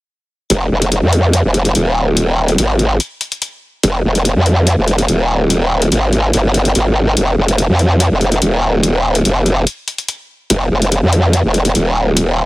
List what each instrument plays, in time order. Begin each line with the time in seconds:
0.50 wobble bass F1, closed hi-hat
0.71 wobble bass F1
0.82 closed hi-hat
0.92 closed hi-hat
1.03 wobble bass F2
1.13 closed hi-hat
1.33 closed hi-hat
1.44 wobble bass F1
1.54 closed hi-hat
1.65 closed hi-hat
1.75 wobble bass D#1, closed hi-hat
2.17 closed hi-hat
2.48 closed hi-hat
2.58 wobble bass G#1, closed hi-hat
2.79 closed hi-hat
3.00 closed hi-hat
3.21 closed hi-hat
3.32 closed hi-hat
3.42 closed hi-hat
3.83 wobble bass F1, closed hi-hat
4.04 wobble bass F1
4.15 closed hi-hat
4.25 closed hi-hat
4.36 wobble bass F2
4.46 closed hi-hat
4.67 closed hi-hat
4.78 wobble bass F1
4.88 closed hi-hat
4.98 closed hi-hat
5.08 wobble bass D#1, closed hi-hat
5.50 closed hi-hat
5.82 closed hi-hat
5.92 wobble bass G#1, closed hi-hat
6.13 closed hi-hat
6.33 wobble bass G1, closed hi-hat
6.54 closed hi-hat
6.65 closed hi-hat
6.75 wobble bass G#1, closed hi-hat
7.17 wobble bass F1, closed hi-hat
7.38 wobble bass F1
7.48 closed hi-hat
7.58 closed hi-hat
7.69 wobble bass F2
7.79 closed hi-hat
8.00 closed hi-hat
8.11 wobble bass F1
8.21 closed hi-hat
8.32 closed hi-hat
8.42 wobble bass D#1, closed hi-hat
8.83 closed hi-hat
9.15 closed hi-hat
9.25 wobble bass F1, closed hi-hat
9.46 closed hi-hat
9.67 closed hi-hat
9.88 closed hi-hat
9.98 closed hi-hat
10.08 closed hi-hat
10.50 wobble bass F1, closed hi-hat
10.71 wobble bass F1
10.82 closed hi-hat
10.92 closed hi-hat
11.03 wobble bass F2
11.13 closed hi-hat
11.33 closed hi-hat
11.44 wobble bass F1
11.54 closed hi-hat
11.65 closed hi-hat
11.75 wobble bass D#1, closed hi-hat
12.17 closed hi-hat